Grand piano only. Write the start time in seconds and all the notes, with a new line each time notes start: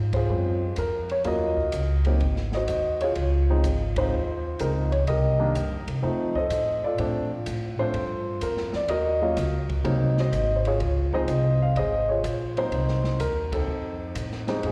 Already playing: F4 G#4
0.14 F4 G#4 C5
0.29 G#3 C4 C#4 F4
0.79 A#4
1.12 C#5
1.25 F#3 A#3 C#4 F4 F#4 A#4 D#5
2.06 F#3 A#3 C4 D#4
2.55 F#4 C5 D#5
3.01 F4 G#4 C#5
3.50 F3 G#3 C4 D#4
3.98 F3 G#3 C4 D#4 F4 C5
4.60 F3 G#3 C4 D#4 A#4
4.92 C#5
5.08 G4 A#4 D#5
5.39 D#3 G3 A#3 D4
6.02 F3 A3 C4 D#4
6.36 A4 C5 D#5
6.84 F4 A4 D5
6.99 F3 A3 C4 D4
7.79 F3 A3 C4 D4 F4 A4 C5
8.43 A#4
8.76 D5
8.89 F#4 A#4 D#5
9.22 F#3 A#3 C#4 F4
9.84 F#3 A#3 C4 D#4
10.20 F#4 C5 D#5
10.56 C5
10.67 F4 G#4 C#5
11.13 F3 G#3 C4 D#4 G#4 C5 D#5
11.62 F5
11.77 G#4 C5 D#5
12.09 F4 G#4 C#5
12.58 F#3 A#3 C4 D#4 F#4 C5
13.20 A#4
13.53 C4 D#4 A4
14.48 F2 G3 G#3 C4 D#4
14.66 G#3 D#4 F4 G#4